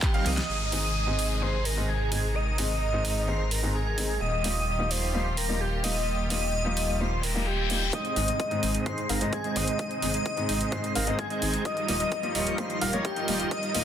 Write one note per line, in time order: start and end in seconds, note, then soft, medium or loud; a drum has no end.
0.00 0.45 D#3 medium
0.00 0.45 G3 medium
0.00 0.45 A#3 medium
0.00 0.45 C4 medium
0.00 0.45 G4 medium
0.00 0.27 G4 loud
0.00 kick loud
0.00 clap loud
0.00 closed hi-hat medium
0.00 ride medium
0.14 0.30 G3 loud
0.14 0.30 C4 medium
0.14 0.30 D#4 medium
0.14 0.30 A#4 medium
0.14 0.30 F5 loud
0.14 closed hi-hat soft
0.26 0.40 C2 loud
0.26 0.72 D#5 loud
0.26 snare medium
0.26 open hi-hat medium
0.26 ride medium
0.37 snare medium
0.37 closed hi-hat medium
0.49 4.19 G#1 medium
0.49 4.17 C3 medium
0.49 7.89 D#3 medium
0.49 4.17 G#3 medium
0.49 4.17 D#4 medium
0.49 2.33 G#4 medium
0.49 downlifter medium
0.72 0.83 G#2 medium
0.72 0.83 D#3 medium
0.72 0.83 G#3 medium
0.72 0.84 C4 medium
0.72 0.84 D#4 medium
0.72 1.43 D#5 loud
0.72 open hi-hat medium
1.07 1.39 G#2 medium
1.07 1.39 D#3 medium
1.07 1.39 G#3 medium
1.07 1.39 C4 medium
1.07 1.40 D#4 loud
1.19 open hi-hat medium
1.41 1.53 G#2 medium
1.41 1.53 D#3 medium
1.41 1.53 G#3 medium
1.41 1.53 C4 medium
1.41 1.53 D#4 loud
1.41 1.67 C5 loud
1.65 1.90 A#4 medium
1.65 open hi-hat medium
1.76 1.88 G#2 medium
1.76 1.88 D#3 medium
1.76 1.88 G#3 medium
1.76 1.88 C4 medium
1.76 1.88 D#4 medium
1.89 2.36 G#4 medium
2.11 2.23 G#2 medium
2.11 2.23 D#3 medium
2.11 2.23 G#3 medium
2.11 2.23 C4 medium
2.11 2.23 D#4 medium
2.11 open hi-hat medium
2.35 4.19 A#4 medium
2.35 2.58 D#5 loud
2.58 2.69 G#2 medium
2.58 2.69 D#3 medium
2.58 2.69 G#3 medium
2.58 2.70 C4 medium
2.58 2.70 D#4 medium
2.58 3.30 D#5 loud
2.58 open hi-hat loud
2.93 3.25 G#2 medium
2.93 3.25 D#3 medium
2.93 3.25 G#3 medium
2.93 3.25 C4 medium
2.93 3.26 D#4 loud
3.05 open hi-hat loud
3.27 3.39 G#2 medium
3.27 3.39 D#3 medium
3.27 3.39 G#3 medium
3.27 3.39 C4 medium
3.27 3.39 D#4 loud
3.27 3.53 C5 loud
3.51 3.76 A#4 medium
3.51 open hi-hat loud
3.62 3.74 G#2 medium
3.62 3.74 D#3 medium
3.62 3.74 G#3 medium
3.62 3.74 C4 medium
3.62 3.74 D#4 medium
3.75 4.20 G#4 medium
3.97 4.09 D#3 medium
3.97 4.09 G#3 medium
3.97 4.09 C4 medium
3.97 4.09 D#4 medium
3.97 open hi-hat loud
4.21 7.91 D#1 medium
4.21 7.89 G3 medium
4.21 7.89 A#3 medium
4.21 7.89 F4 medium
4.21 7.89 G4 medium
4.21 4.43 D#5 loud
4.44 4.55 F3 medium
4.44 4.55 G3 medium
4.44 4.56 A#3 medium
4.44 4.56 D#4 medium
4.44 4.92 D#5 loud
4.44 open hi-hat loud
4.79 5.11 F3 medium
4.79 5.11 G3 medium
4.79 5.11 A#3 medium
4.79 5.12 D#4 loud
4.91 5.37 C5 loud
4.91 open hi-hat loud
5.13 5.25 F3 medium
5.13 5.25 G3 medium
5.13 5.25 A#3 medium
5.13 5.25 D#4 medium
5.37 5.62 A#4 medium
5.37 open hi-hat loud
5.48 5.60 F3 medium
5.48 5.60 G3 medium
5.48 5.60 A#3 medium
5.48 5.60 D#4 medium
5.61 5.83 G4 medium
5.83 5.95 F3 medium
5.83 5.95 G3 medium
5.83 5.95 A#3 medium
5.83 5.95 D#4 medium
5.83 6.27 D#5 loud
5.83 open hi-hat loud
6.30 6.41 F3 medium
6.30 6.41 G3 medium
6.30 6.42 A#3 medium
6.30 6.42 D#4 medium
6.30 7.02 D#5 loud
6.30 open hi-hat loud
6.65 6.97 F3 medium
6.65 6.97 G3 medium
6.65 6.97 A#3 medium
6.65 6.98 D#4 loud
6.77 open hi-hat loud
6.99 7.11 F3 medium
6.99 7.11 G3 medium
6.99 7.11 A#3 medium
6.99 7.12 D#4 loud
6.99 7.25 C5 medium
6.99 reverse cymbal medium
7.23 7.46 A#4 medium
7.23 open hi-hat loud
7.34 7.46 F3 medium
7.34 7.46 G3 medium
7.34 7.46 A#3 medium
7.34 7.46 D#4 medium
7.47 7.95 G4 loud
7.69 7.81 F3 medium
7.69 7.81 G3 medium
7.69 7.81 A#3 medium
7.69 7.81 D#4 medium
7.69 open hi-hat loud
7.93 11.62 C3 medium
7.93 11.61 D#3 medium
7.93 8.25 G#3 medium
7.93 8.25 C4 medium
7.93 8.25 D#4 medium
7.93 8.25 C5 medium
7.93 8.25 D#5 loud
7.93 8.16 D#5 loud
7.93 8.25 D#5 medium
7.93 kick loud
7.93 closed hi-hat soft
8.05 closed hi-hat soft
8.16 8.31 G#1 medium
8.16 8.27 G#2 medium
8.16 8.27 D#3 medium
8.16 8.28 G#3 medium
8.16 8.28 C4 medium
8.16 8.28 D#4 medium
8.16 8.82 D#5 loud
8.16 open hi-hat loud
8.28 8.60 G#3 medium
8.28 8.60 C4 medium
8.28 8.60 D#4 medium
8.28 8.60 C5 medium
8.28 8.60 D#5 loud
8.28 closed hi-hat medium
8.40 kick loud
8.40 closed hi-hat medium
8.51 8.83 G#2 medium
8.51 8.83 D#3 medium
8.51 8.83 G#3 medium
8.51 8.83 C4 medium
8.51 8.84 D#4 loud
8.51 closed hi-hat soft
8.63 8.77 G#1 medium
8.63 9.07 G#3 medium
8.63 9.07 C4 medium
8.63 9.07 D#4 medium
8.63 9.07 C5 medium
8.63 9.07 D#5 medium
8.63 open hi-hat loud
8.75 closed hi-hat medium
8.86 8.97 D#3 medium
8.86 8.97 G#3 medium
8.86 8.97 C4 medium
8.86 8.98 D#4 loud
8.86 9.11 C5 loud
8.86 kick loud
8.86 closed hi-hat medium
8.98 closed hi-hat soft
9.09 9.24 G#1 medium
9.09 9.18 G#3 medium
9.09 9.18 C4 medium
9.09 9.18 D#4 medium
9.09 9.32 A#4 loud
9.09 9.18 C5 medium
9.09 9.18 F5 loud
9.09 open hi-hat loud
9.20 9.32 G#2 medium
9.20 9.32 D#3 medium
9.20 9.32 G#3 medium
9.20 9.37 G#3 loud
9.20 9.37 C4 medium
9.20 9.32 C4 medium
9.20 9.37 D#4 medium
9.20 9.32 D#4 medium
9.20 9.37 C5 medium
9.20 9.37 D#5 loud
9.20 closed hi-hat medium
9.33 9.57 G#4 loud
9.33 kick loud
9.33 closed hi-hat medium
9.44 9.76 G#3 medium
9.44 9.76 C4 medium
9.44 9.76 D#4 medium
9.44 9.76 C5 medium
9.44 9.76 D#5 medium
9.44 closed hi-hat soft
9.55 9.70 G#1 medium
9.55 9.67 G#2 medium
9.55 9.67 D#3 medium
9.55 9.67 G#3 medium
9.55 9.67 C4 medium
9.55 9.67 D#4 medium
9.55 10.02 D#5 loud
9.55 open hi-hat loud
9.68 closed hi-hat medium
9.79 10.11 D#5 loud
9.79 kick loud
9.79 closed hi-hat soft
9.91 closed hi-hat soft
10.02 10.17 G#1 loud
10.02 10.13 G#2 medium
10.02 10.13 D#3 medium
10.02 10.14 G#3 medium
10.02 10.14 C4 medium
10.02 10.14 D#4 medium
10.02 10.74 D#5 loud
10.02 open hi-hat loud
10.14 10.46 G#3 medium
10.14 10.46 C4 medium
10.14 10.46 D#4 medium
10.14 10.46 C5 medium
10.14 10.46 D#5 loud
10.14 closed hi-hat soft
10.26 kick loud
10.26 closed hi-hat medium
10.37 10.69 G#2 medium
10.37 10.69 D#3 medium
10.37 10.69 G#3 medium
10.37 10.70 C4 medium
10.37 10.70 D#4 loud
10.37 closed hi-hat soft
10.49 10.63 G#1 medium
10.49 10.93 G#3 medium
10.49 10.93 C4 medium
10.49 10.93 D#4 medium
10.49 10.93 C5 medium
10.49 10.93 D#5 medium
10.49 open hi-hat loud
10.61 closed hi-hat soft
10.72 10.83 G#2 medium
10.72 10.83 D#3 medium
10.72 10.83 G#3 medium
10.72 10.83 C4 medium
10.72 10.84 D#4 loud
10.72 10.97 C5 loud
10.72 kick loud
10.72 closed hi-hat medium
10.84 closed hi-hat soft
10.95 11.10 G#1 medium
10.95 11.04 G#3 loud
10.95 11.04 C4 medium
10.95 11.04 D#4 medium
10.95 11.20 A#4 loud
10.95 11.04 C5 medium
10.95 11.04 F5 loud
10.95 open hi-hat loud
11.06 11.18 G#2 medium
11.06 11.18 D#3 medium
11.06 11.18 G#3 medium
11.06 11.23 G#3 loud
11.06 11.23 C4 medium
11.06 11.18 C4 medium
11.06 11.23 D#4 medium
11.06 11.19 D#4 medium
11.06 11.23 C5 medium
11.06 11.23 D#5 loud
11.06 closed hi-hat medium
11.19 11.67 G#4 loud
11.19 kick loud
11.19 closed hi-hat medium
11.30 11.62 G#3 medium
11.30 11.62 C4 medium
11.30 11.62 D#4 medium
11.30 11.62 C5 medium
11.30 11.62 D#5 medium
11.30 closed hi-hat soft
11.41 11.56 G#1 medium
11.41 11.53 D#3 medium
11.41 11.53 G#3 medium
11.41 11.53 C4 medium
11.41 11.53 D#4 medium
11.41 open hi-hat loud
11.54 closed hi-hat medium
11.65 13.84 D#3 medium
11.65 13.84 F3 medium
11.65 11.97 G3 medium
11.65 13.84 G3 medium
11.65 13.84 A#3 medium
11.65 11.97 D#4 medium
11.65 11.97 F4 medium
11.65 13.49 F4 medium
11.65 11.97 A#4 medium
11.65 11.97 D#5 loud
11.65 11.88 D#5 loud
11.65 kick loud
11.65 closed hi-hat soft
11.77 closed hi-hat soft
11.88 12.03 D#1 loud
11.88 11.99 F3 medium
11.88 12.00 G3 medium
11.88 12.00 A#3 medium
11.88 12.00 D#4 loud
11.88 12.37 D#5 loud
11.88 open hi-hat loud
12.00 12.32 G3 medium
12.00 12.32 D#4 medium
12.00 12.32 F4 medium
12.00 12.32 A#4 medium
12.00 12.32 D#5 loud
12.00 closed hi-hat soft
12.12 kick loud
12.12 closed hi-hat soft
12.23 12.55 F3 medium
12.23 12.55 G3 medium
12.23 12.56 A#3 medium
12.23 12.56 D#4 loud
12.23 closed hi-hat soft
12.35 12.49 D#1 medium
12.35 12.79 G3 medium
12.35 12.79 D#4 medium
12.35 12.79 F4 medium
12.35 12.79 A#4 medium
12.35 12.60 C#5 loud
12.35 12.79 D#5 medium
12.35 open hi-hat loud
12.47 closed hi-hat soft
12.58 12.69 F3 medium
12.58 12.69 G3 medium
12.58 12.69 A#3 medium
12.58 12.70 D#4 loud
12.58 12.83 C5 loud
12.58 kick loud
12.58 closed hi-hat medium
12.70 closed hi-hat soft
12.81 12.96 D#1 medium
12.81 12.90 G3 loud
12.81 12.90 D#4 medium
12.81 12.90 F4 medium
12.81 12.90 A#4 medium
12.81 13.04 A#4 medium
12.81 12.90 F5 loud
12.81 open hi-hat loud
12.92 13.04 F3 medium
12.92 13.04 G3 medium
12.92 13.09 G3 loud
12.92 13.04 A#3 medium
12.92 13.09 D#4 medium
12.92 13.05 D#4 medium
12.92 13.09 F4 medium
12.92 13.09 A#4 medium
12.92 13.09 C#5 loud
12.92 closed hi-hat soft
13.05 13.53 G4 loud
13.05 kick loud
13.05 closed hi-hat soft
13.16 13.48 G3 medium
13.16 13.48 D#4 medium
13.16 13.48 F4 medium
13.16 13.48 A#4 medium
13.16 13.48 D#5 medium
13.16 closed hi-hat soft
13.27 13.42 D#1 medium
13.27 13.39 F3 medium
13.27 13.39 G3 medium
13.27 13.39 A#3 medium
13.27 13.39 D#4 medium
13.27 open hi-hat loud
13.40 closed hi-hat soft
13.51 13.83 G3 medium
13.51 13.83 D#4 medium
13.51 13.84 D#4 medium
13.51 13.83 F4 medium
13.51 13.83 A#4 medium
13.51 13.83 D#5 medium
13.51 13.83 D#5 loud
13.51 13.74 D#5 loud
13.51 kick loud
13.51 closed hi-hat soft
13.63 closed hi-hat soft
13.74 13.84 D#1 medium
13.74 13.84 F3 medium
13.74 13.84 G3 medium
13.74 13.84 A#3 medium
13.74 13.84 D#4 medium
13.74 13.84 D#5 loud
13.74 open hi-hat loud